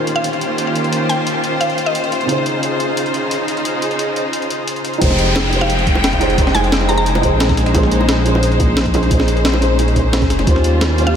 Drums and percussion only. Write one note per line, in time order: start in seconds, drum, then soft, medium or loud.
0.07 closed hi-hat medium
0.24 closed hi-hat medium
0.33 closed hi-hat soft
0.41 closed hi-hat medium
0.58 closed hi-hat medium
0.76 closed hi-hat medium
0.84 closed hi-hat soft
0.93 closed hi-hat medium
1.10 closed hi-hat medium
1.27 closed hi-hat medium
1.44 closed hi-hat medium
1.61 closed hi-hat medium
1.70 closed hi-hat soft
1.78 closed hi-hat medium
1.95 closed hi-hat medium
2.04 closed hi-hat soft
2.12 closed hi-hat medium
2.21 closed hi-hat soft
2.29 closed hi-hat medium
2.46 closed hi-hat medium
2.63 closed hi-hat medium
2.80 closed hi-hat medium
2.97 closed hi-hat medium
3.06 closed hi-hat soft
3.14 closed hi-hat medium
3.31 closed hi-hat medium
3.48 closed hi-hat medium
3.57 closed hi-hat soft
3.65 closed hi-hat medium
3.82 closed hi-hat medium
3.91 closed hi-hat soft
3.99 closed hi-hat medium
4.16 closed hi-hat medium
4.33 closed hi-hat medium
4.42 closed hi-hat soft
4.50 closed hi-hat medium
4.68 closed hi-hat loud
4.76 closed hi-hat soft
4.85 closed hi-hat medium
4.94 closed hi-hat soft
5.02 kick loud
5.02 closed hi-hat loud
5.02 high bongo medium
5.10 snare soft
5.19 closed hi-hat medium
5.36 snare loud
5.36 closed hi-hat loud
5.36 high bongo medium
5.53 closed hi-hat medium
5.61 high bongo medium
5.70 closed hi-hat loud
5.79 closed hi-hat soft
5.87 kick loud
5.87 closed hi-hat medium
5.95 high bongo medium
6.04 snare loud
6.04 closed hi-hat loud
6.13 kick medium
6.13 snare soft
6.13 closed hi-hat soft
6.21 closed hi-hat medium
6.21 high bongo medium
6.30 closed hi-hat soft
6.38 kick loud
6.38 closed hi-hat loud
6.47 snare soft
6.47 snare medium
6.55 closed hi-hat medium
6.55 high bongo medium
6.64 closed hi-hat soft
6.72 snare loud
6.72 closed hi-hat medium
6.81 high bongo medium
6.89 closed hi-hat medium
7.06 closed hi-hat medium
7.15 closed hi-hat soft
7.15 high bongo medium
7.23 kick medium
7.23 closed hi-hat medium
7.40 snare loud
7.40 closed hi-hat medium
7.40 high bongo medium
7.49 kick loud
7.49 snare soft
7.49 closed hi-hat soft
7.57 snare medium
7.57 closed hi-hat medium
7.66 snare soft
7.66 closed hi-hat soft
7.75 kick loud
7.75 closed hi-hat medium
7.75 high bongo medium
7.83 snare soft
7.92 closed hi-hat medium
8.01 high bongo medium
8.09 snare loud
8.09 closed hi-hat medium
8.26 closed hi-hat medium
8.35 high bongo medium
8.43 closed hi-hat loud
8.52 closed hi-hat soft
8.60 kick loud
8.60 closed hi-hat medium
8.60 high bongo medium
8.77 snare loud
8.77 closed hi-hat medium
8.86 kick medium
8.86 snare soft
8.86 closed hi-hat soft
8.94 closed hi-hat medium
8.94 high bongo medium
9.03 closed hi-hat soft
9.11 kick loud
9.11 closed hi-hat medium
9.19 snare soft
9.19 high bongo soft
9.28 closed hi-hat medium
9.37 closed hi-hat soft
9.45 snare loud
9.45 closed hi-hat medium
9.53 high bongo medium
9.62 closed hi-hat medium
9.79 closed hi-hat medium
9.79 high bongo medium
9.88 closed hi-hat soft
9.96 kick medium
9.96 closed hi-hat medium
10.13 snare loud
10.13 closed hi-hat medium
10.13 high bongo medium
10.22 kick loud
10.22 snare soft
10.22 closed hi-hat soft
10.30 snare medium
10.30 closed hi-hat medium
10.39 snare soft
10.39 closed hi-hat soft
10.39 high bongo medium
10.47 kick loud
10.47 closed hi-hat medium
10.47 high bongo medium
10.56 snare soft
10.64 closed hi-hat medium
10.81 snare loud
10.81 closed hi-hat medium
10.81 high bongo medium
10.98 closed hi-hat medium
11.07 high bongo soft